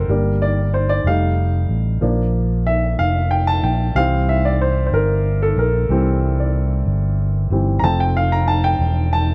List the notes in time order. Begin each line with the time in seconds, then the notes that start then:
Already playing: C4 A#4 C5
0.08 G1 G3 A#3 D4
0.42 D5
0.74 C5
0.89 D5
1.04 F1 G3 A3 D#4 F5
1.69 A1
2.01 A#1 F3 A#3 D4
2.67 E5
2.99 F1 F5
3.31 G5
3.47 A5
3.63 A#1 G5
3.95 C2 E3 G3 C4 F5
4.29 E5
4.45 D5
4.61 C5
4.87 C5
4.92 G1 A#4
5.42 A4
5.56 A#1 A#4
5.89 C2 E3 G3 C4
6.40 D5
6.86 G1
7.50 G1 E3 G3 C4
7.79 F1 A#5
7.84 F3 A3 C4 A5
8.00 G5
8.17 F5
8.32 A#5
8.48 A5
8.64 G5
8.79 E1
9.13 A5